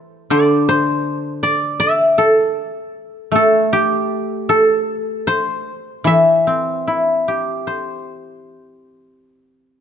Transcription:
Already playing: E3 C5 D5 E5
0.30 D3 D5
0.69 C5
1.43 D5
1.80 E5
2.18 A4
3.32 A3 A4
3.73 G4
4.49 A4
5.27 C5
6.04 E3 E5
6.47 C4
6.87 E4
7.28 G4
7.67 C5
7.76 D#5
8.16 D5

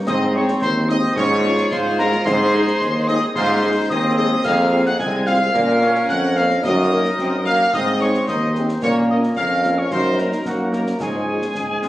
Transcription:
0.07 G#2 C4 D#4 C5 D#5 D#6, concert bass drum, snare, crash
0.35 G#3 C4 D#4 C#5 C#6
0.48 snare
0.62 D#2 D#4 C5 C6, concert bass drum, snare
0.89 G#3 C4 D#4 D#5 D#6, snare
1.16 G#2 C#4 F4 G#4 C#5 C#6, concert bass drum, snare
1.44 G#3 C#4 D#4 F4, snare
1.57 snare
1.71 G#2 F4 C5 C6, concert bass drum, snare
1.98 G#3 C#4 F4 A#4 A#5, snare
2.12 snare
2.25 G#2 C4 D#4 G#4 C5 C6, concert bass drum, snare, crash
2.54 G#3 D#4 G#4
2.67 snare
2.81 D#2 G#3, concert bass drum, snare
3.07 G#3 C4 D#4 G#4 D#5 D#6, snare
3.35 G#2 D#4 F4 G#4 C5 C6, concert bass drum, snare
3.63 G#3 D#4 G#4
3.90 D#2 C4 D#4 G#4 D#5 D#6, concert bass drum, snare
4.17 G#3 D#4 G#4 D#5 D#6
4.44 F2 A#3 C4 G#4 F5 F6, concert bass drum, snare, crash
4.72 C4 F4 G#4
4.86 F#5 F#6, snare
4.98 C2 G#3 C4 G#4 G#5 G#6, concert bass drum, snare
5.26 C4 F4 G#4 F5 F6, snare
5.53 A#2 A#3 C#4 A#4, concert bass drum, snare
5.81 A#3 C#4 A#4, snare
5.95 snare
6.09 F2 F#5 F#6, concert bass drum, snare
6.36 A#3 C#4 A#4 F5 F6, snare
6.50 snare
6.62 F#2 D#4 A#4 D#5 D#6, concert bass drum, snare, crash
6.90 A#3 D#4 A#4
7.05 snare
7.18 F#2 C4, concert bass drum, snare
7.45 A#3 D#4 A#4 F5 F6, snare
7.72 G#2 C4 D#4 C5 D#5 D#6, concert bass drum, snare
8.00 C4 D#4 G#4 C#5 C#6, snare
8.14 snare
8.27 D#2 D#4 C5 D#5 D#6, concert bass drum, snare
8.54 C4 D#4 G#4, snare
8.69 snare
8.82 A#2 A#3 C#4 A#4 C#5 C#6, concert bass drum, snare, crash
9.09 A#3 C#4 F4 D#5 D#6
9.23 snare
9.36 F2 C#4 A#4 F5 F6, concert bass drum, snare
9.63 A#3 C#4 F4, snare
9.78 C#5 C#6
9.91 F#2 D#4 A#4 C5 C6, concert bass drum, snare
10.18 A#3 D#4 A#4 A#5, snare
10.32 snare
10.45 F#2 A#3 D#4 F#4 A#4 F#5, concert bass drum, snare
10.73 A#3 D#4 A#4 A#5, snare
10.87 snare
11.00 G#2 G#3 F4 G#4 C#5 G#5, concert bass drum, snare, crash
11.28 C#4 F4 G#4
11.42 snare
11.55 G#2 G#4, concert bass drum, snare
11.82 C#4 F4 G#4, snare

